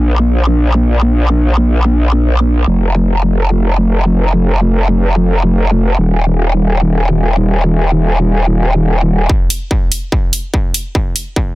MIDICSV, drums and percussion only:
0, 0, Header, 1, 2, 480
1, 0, Start_track
1, 0, Tempo, 500000
1, 11088, End_track
2, 0, Start_track
2, 0, Title_t, "Drums"
2, 8923, Note_on_c, 9, 36, 91
2, 9019, Note_off_c, 9, 36, 0
2, 9122, Note_on_c, 9, 42, 79
2, 9218, Note_off_c, 9, 42, 0
2, 9320, Note_on_c, 9, 36, 90
2, 9416, Note_off_c, 9, 36, 0
2, 9519, Note_on_c, 9, 42, 77
2, 9615, Note_off_c, 9, 42, 0
2, 9718, Note_on_c, 9, 36, 92
2, 9814, Note_off_c, 9, 36, 0
2, 9916, Note_on_c, 9, 42, 78
2, 10012, Note_off_c, 9, 42, 0
2, 10115, Note_on_c, 9, 36, 99
2, 10211, Note_off_c, 9, 36, 0
2, 10314, Note_on_c, 9, 42, 79
2, 10410, Note_off_c, 9, 42, 0
2, 10512, Note_on_c, 9, 36, 94
2, 10608, Note_off_c, 9, 36, 0
2, 10710, Note_on_c, 9, 42, 80
2, 10806, Note_off_c, 9, 42, 0
2, 10909, Note_on_c, 9, 36, 90
2, 11005, Note_off_c, 9, 36, 0
2, 11088, End_track
0, 0, End_of_file